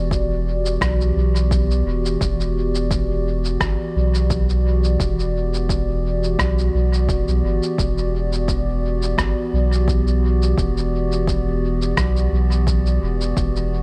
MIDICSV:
0, 0, Header, 1, 4, 480
1, 0, Start_track
1, 0, Key_signature, 1, "minor"
1, 0, Tempo, 697674
1, 1520, Time_signature, 4, 2, 24, 8
1, 9512, End_track
2, 0, Start_track
2, 0, Title_t, "Ambient pad"
2, 0, Program_c, 0, 92
2, 0, Note_on_c, 0, 52, 77
2, 0, Note_on_c, 0, 59, 83
2, 0, Note_on_c, 0, 66, 66
2, 0, Note_on_c, 0, 67, 75
2, 0, Note_on_c, 0, 74, 70
2, 9512, Note_off_c, 0, 52, 0
2, 9512, Note_off_c, 0, 59, 0
2, 9512, Note_off_c, 0, 66, 0
2, 9512, Note_off_c, 0, 67, 0
2, 9512, Note_off_c, 0, 74, 0
2, 9512, End_track
3, 0, Start_track
3, 0, Title_t, "Sub bass"
3, 0, Program_c, 1, 38
3, 0, Note_on_c, 1, 28, 105
3, 536, Note_off_c, 1, 28, 0
3, 558, Note_on_c, 1, 35, 98
3, 772, Note_off_c, 1, 35, 0
3, 797, Note_on_c, 1, 35, 96
3, 1257, Note_off_c, 1, 35, 0
3, 1278, Note_on_c, 1, 28, 90
3, 1492, Note_off_c, 1, 28, 0
3, 1521, Note_on_c, 1, 28, 103
3, 2459, Note_off_c, 1, 28, 0
3, 2481, Note_on_c, 1, 31, 102
3, 2595, Note_off_c, 1, 31, 0
3, 2723, Note_on_c, 1, 35, 101
3, 3420, Note_off_c, 1, 35, 0
3, 3438, Note_on_c, 1, 28, 99
3, 4378, Note_off_c, 1, 28, 0
3, 4396, Note_on_c, 1, 35, 96
3, 4611, Note_off_c, 1, 35, 0
3, 4639, Note_on_c, 1, 35, 94
3, 4872, Note_off_c, 1, 35, 0
3, 4876, Note_on_c, 1, 28, 85
3, 4992, Note_off_c, 1, 28, 0
3, 5011, Note_on_c, 1, 35, 83
3, 5107, Note_off_c, 1, 35, 0
3, 5120, Note_on_c, 1, 31, 89
3, 5234, Note_off_c, 1, 31, 0
3, 5356, Note_on_c, 1, 28, 99
3, 6297, Note_off_c, 1, 28, 0
3, 6315, Note_on_c, 1, 31, 96
3, 6432, Note_off_c, 1, 31, 0
3, 6556, Note_on_c, 1, 35, 97
3, 7257, Note_off_c, 1, 35, 0
3, 7277, Note_on_c, 1, 28, 102
3, 8217, Note_off_c, 1, 28, 0
3, 8237, Note_on_c, 1, 35, 99
3, 8452, Note_off_c, 1, 35, 0
3, 8476, Note_on_c, 1, 35, 100
3, 8937, Note_off_c, 1, 35, 0
3, 8960, Note_on_c, 1, 28, 93
3, 9173, Note_off_c, 1, 28, 0
3, 9197, Note_on_c, 1, 28, 98
3, 9512, Note_off_c, 1, 28, 0
3, 9512, End_track
4, 0, Start_track
4, 0, Title_t, "Drums"
4, 77, Note_on_c, 9, 36, 107
4, 83, Note_on_c, 9, 82, 54
4, 146, Note_off_c, 9, 36, 0
4, 151, Note_off_c, 9, 82, 0
4, 451, Note_on_c, 9, 82, 41
4, 520, Note_off_c, 9, 82, 0
4, 559, Note_on_c, 9, 36, 101
4, 563, Note_on_c, 9, 37, 88
4, 563, Note_on_c, 9, 82, 52
4, 628, Note_off_c, 9, 36, 0
4, 632, Note_off_c, 9, 37, 0
4, 632, Note_off_c, 9, 82, 0
4, 694, Note_on_c, 9, 82, 29
4, 763, Note_off_c, 9, 82, 0
4, 934, Note_on_c, 9, 82, 43
4, 1002, Note_off_c, 9, 82, 0
4, 1039, Note_on_c, 9, 36, 105
4, 1044, Note_on_c, 9, 82, 54
4, 1108, Note_off_c, 9, 36, 0
4, 1113, Note_off_c, 9, 82, 0
4, 1174, Note_on_c, 9, 82, 29
4, 1243, Note_off_c, 9, 82, 0
4, 1415, Note_on_c, 9, 82, 42
4, 1483, Note_off_c, 9, 82, 0
4, 1520, Note_on_c, 9, 36, 103
4, 1523, Note_on_c, 9, 82, 56
4, 1589, Note_off_c, 9, 36, 0
4, 1592, Note_off_c, 9, 82, 0
4, 1654, Note_on_c, 9, 82, 30
4, 1723, Note_off_c, 9, 82, 0
4, 1892, Note_on_c, 9, 82, 42
4, 1961, Note_off_c, 9, 82, 0
4, 2000, Note_on_c, 9, 36, 99
4, 2002, Note_on_c, 9, 82, 55
4, 2069, Note_off_c, 9, 36, 0
4, 2071, Note_off_c, 9, 82, 0
4, 2372, Note_on_c, 9, 82, 42
4, 2441, Note_off_c, 9, 82, 0
4, 2481, Note_on_c, 9, 36, 104
4, 2482, Note_on_c, 9, 37, 91
4, 2482, Note_on_c, 9, 82, 51
4, 2549, Note_off_c, 9, 36, 0
4, 2551, Note_off_c, 9, 37, 0
4, 2551, Note_off_c, 9, 82, 0
4, 2852, Note_on_c, 9, 82, 43
4, 2921, Note_off_c, 9, 82, 0
4, 2960, Note_on_c, 9, 36, 115
4, 2960, Note_on_c, 9, 82, 53
4, 3029, Note_off_c, 9, 36, 0
4, 3029, Note_off_c, 9, 82, 0
4, 3092, Note_on_c, 9, 82, 31
4, 3161, Note_off_c, 9, 82, 0
4, 3330, Note_on_c, 9, 82, 42
4, 3398, Note_off_c, 9, 82, 0
4, 3439, Note_on_c, 9, 36, 111
4, 3441, Note_on_c, 9, 82, 53
4, 3508, Note_off_c, 9, 36, 0
4, 3510, Note_off_c, 9, 82, 0
4, 3573, Note_on_c, 9, 82, 29
4, 3642, Note_off_c, 9, 82, 0
4, 3812, Note_on_c, 9, 82, 39
4, 3880, Note_off_c, 9, 82, 0
4, 3917, Note_on_c, 9, 36, 102
4, 3921, Note_on_c, 9, 82, 55
4, 3986, Note_off_c, 9, 36, 0
4, 3989, Note_off_c, 9, 82, 0
4, 4290, Note_on_c, 9, 82, 39
4, 4359, Note_off_c, 9, 82, 0
4, 4396, Note_on_c, 9, 36, 109
4, 4400, Note_on_c, 9, 37, 87
4, 4400, Note_on_c, 9, 82, 49
4, 4465, Note_off_c, 9, 36, 0
4, 4469, Note_off_c, 9, 37, 0
4, 4469, Note_off_c, 9, 82, 0
4, 4530, Note_on_c, 9, 82, 27
4, 4599, Note_off_c, 9, 82, 0
4, 4770, Note_on_c, 9, 82, 39
4, 4839, Note_off_c, 9, 82, 0
4, 4876, Note_on_c, 9, 36, 105
4, 4879, Note_on_c, 9, 82, 48
4, 4945, Note_off_c, 9, 36, 0
4, 4948, Note_off_c, 9, 82, 0
4, 5009, Note_on_c, 9, 82, 28
4, 5078, Note_off_c, 9, 82, 0
4, 5249, Note_on_c, 9, 82, 41
4, 5317, Note_off_c, 9, 82, 0
4, 5355, Note_on_c, 9, 36, 103
4, 5359, Note_on_c, 9, 82, 50
4, 5424, Note_off_c, 9, 36, 0
4, 5428, Note_off_c, 9, 82, 0
4, 5489, Note_on_c, 9, 82, 29
4, 5557, Note_off_c, 9, 82, 0
4, 5728, Note_on_c, 9, 82, 40
4, 5797, Note_off_c, 9, 82, 0
4, 5835, Note_on_c, 9, 36, 100
4, 5837, Note_on_c, 9, 82, 51
4, 5904, Note_off_c, 9, 36, 0
4, 5906, Note_off_c, 9, 82, 0
4, 6208, Note_on_c, 9, 82, 38
4, 6277, Note_off_c, 9, 82, 0
4, 6316, Note_on_c, 9, 36, 100
4, 6319, Note_on_c, 9, 37, 86
4, 6319, Note_on_c, 9, 82, 47
4, 6385, Note_off_c, 9, 36, 0
4, 6388, Note_off_c, 9, 37, 0
4, 6388, Note_off_c, 9, 82, 0
4, 6691, Note_on_c, 9, 82, 39
4, 6760, Note_off_c, 9, 82, 0
4, 6796, Note_on_c, 9, 36, 102
4, 6802, Note_on_c, 9, 82, 49
4, 6865, Note_off_c, 9, 36, 0
4, 6871, Note_off_c, 9, 82, 0
4, 6931, Note_on_c, 9, 82, 26
4, 6999, Note_off_c, 9, 82, 0
4, 7170, Note_on_c, 9, 82, 41
4, 7239, Note_off_c, 9, 82, 0
4, 7277, Note_on_c, 9, 36, 104
4, 7282, Note_on_c, 9, 82, 51
4, 7345, Note_off_c, 9, 36, 0
4, 7351, Note_off_c, 9, 82, 0
4, 7412, Note_on_c, 9, 82, 29
4, 7481, Note_off_c, 9, 82, 0
4, 7650, Note_on_c, 9, 82, 38
4, 7719, Note_off_c, 9, 82, 0
4, 7757, Note_on_c, 9, 36, 97
4, 7762, Note_on_c, 9, 82, 50
4, 7826, Note_off_c, 9, 36, 0
4, 7830, Note_off_c, 9, 82, 0
4, 8131, Note_on_c, 9, 82, 39
4, 8200, Note_off_c, 9, 82, 0
4, 8237, Note_on_c, 9, 36, 98
4, 8238, Note_on_c, 9, 37, 85
4, 8238, Note_on_c, 9, 82, 48
4, 8306, Note_off_c, 9, 36, 0
4, 8307, Note_off_c, 9, 37, 0
4, 8307, Note_off_c, 9, 82, 0
4, 8369, Note_on_c, 9, 82, 27
4, 8438, Note_off_c, 9, 82, 0
4, 8609, Note_on_c, 9, 82, 40
4, 8678, Note_off_c, 9, 82, 0
4, 8717, Note_on_c, 9, 36, 97
4, 8720, Note_on_c, 9, 82, 47
4, 8785, Note_off_c, 9, 36, 0
4, 8788, Note_off_c, 9, 82, 0
4, 8848, Note_on_c, 9, 82, 26
4, 8917, Note_off_c, 9, 82, 0
4, 9089, Note_on_c, 9, 82, 39
4, 9157, Note_off_c, 9, 82, 0
4, 9197, Note_on_c, 9, 36, 101
4, 9199, Note_on_c, 9, 82, 50
4, 9266, Note_off_c, 9, 36, 0
4, 9267, Note_off_c, 9, 82, 0
4, 9330, Note_on_c, 9, 82, 30
4, 9399, Note_off_c, 9, 82, 0
4, 9512, End_track
0, 0, End_of_file